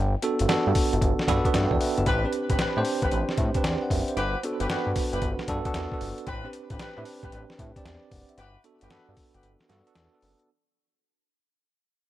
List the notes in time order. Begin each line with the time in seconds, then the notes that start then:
Already playing: G1 G5
0.22 B3 D4 F#4 A4, closed hi-hat
0.39 G1, closed hi-hat
0.48 G2 B3 D4 F#4 A4, snare, closed hi-hat
0.67 G2
0.75 kick, open hi-hat
0.93 G1, closed hi-hat
1.01 G1, kick, closed hi-hat
1.19 snare
1.28 G2 B3 D4 F#4 A4 B5, kick, snare, closed hi-hat
1.45 B3 D4 F#4 B4, kick, closed hi-hat
1.54 G2 E5 G5, snare, closed hi-hat
1.71 E2 D5, kick
1.81 B4 E5, open hi-hat
1.98 G1 G4, closed hi-hat
2.06 A1 C4 D4 G4 B4, kick, closed hi-hat
2.24 C4 D4 G4 B4
2.33 closed hi-hat
2.50 A1 C4 D4 G4 B4, kick, closed hi-hat
2.59 A2 C4 D4 G4 B4, snare, closed hi-hat
2.77 A2 C4 D4 G4 C5
2.85 open hi-hat
3.02 A1 C4 D4 G4 B4, kick, closed hi-hat
3.12 A1, closed hi-hat
3.29 snare
3.38 A2, kick, closed hi-hat
3.54 C4 D4 G4 B4, kick, closed hi-hat
3.64 E2 D5, snare, closed hi-hat
3.82 F#5
3.90 F#1 E5, kick, open hi-hat
4.08 C5, closed hi-hat
4.17 G1 F#4 G4 B4, closed hi-hat
4.43 B3 D4 F#4 A4, closed hi-hat
4.60 G1 F#4 G4 B4, closed hi-hat
4.69 G2 B3 D4 F#4 G4 B4, snare, closed hi-hat
4.87 G2
4.96 kick, open hi-hat
5.12 G1 F#4 G4 B4, closed hi-hat
5.22 G1, kick, closed hi-hat
5.39 snare
5.48 G2 B3 D4 F#4 A4, kick, closed hi-hat
5.65 B3 D4 F#4 A4, kick, closed hi-hat
5.74 E2, snare, closed hi-hat
5.92 B3 D4 F#4 A4, kick
6.01 G1, open hi-hat
6.18 closed hi-hat
6.27 A1 C4 D4 G4 B4, kick, closed hi-hat
6.44 C4 D4 G4 B4
6.53 closed hi-hat
6.70 A1 C4 D4 G4 B4, kick, closed hi-hat
6.79 A2 C4 D4 G4 B4, snare, closed hi-hat
6.97 A2 C4 D4 G4 B4
7.05 open hi-hat
7.23 A1 C4 D4 G4 B4, kick, closed hi-hat
7.32 A1, closed hi-hat
7.50 snare
7.59 A2, kick, closed hi-hat
7.76 C4 D4 G4 D5, kick, closed hi-hat
7.85 E2 D5, snare, closed hi-hat
8.11 F#1 F#5, kick, open hi-hat
8.29 E5, closed hi-hat
8.38 G1 F#4 G4 B4, closed hi-hat
8.64 B3 D4 F#4 A4, closed hi-hat
8.81 G1 F#4 G4 B4, closed hi-hat
8.90 G2 B3 D4 F#4 G4 A4 B4, snare, closed hi-hat
9.09 G2
9.17 kick, open hi-hat
9.34 G1 F#4 G4 B4, closed hi-hat
9.43 G1, closed hi-hat
9.60 snare
9.69 G2 B3 D4 F#4 A4, snare, closed hi-hat
9.87 B3 D4 F#4 A4, closed hi-hat
9.95 E2, snare, closed hi-hat
10.13 B3 D4 F#4 A4
10.22 F#1, open hi-hat
10.40 closed hi-hat